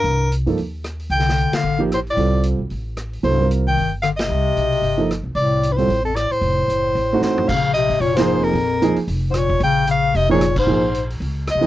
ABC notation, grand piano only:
X:1
M:4/4
L:1/8
Q:"Swing" 1/4=226
K:Cdor
V:1 name="Grand piano"
z3 [F,B,EA] z4 | z4 z [F,B,EG] z2 | [G,CFA]3 z4 z | [^F,=B,=EA] [G,C=F_B]2 z4 z |
z4 z [F,B,EA] z2 | z3 [G,CFA] z4 | z4 z [A,CE_G]3 | [K:Bbdor] z4 z [F,B,EA]3 |
z2 [F,B,EA] z4 z | z4 z [F,B,EA] z2 | [F,B,EA] z6 [F,B,EA] |]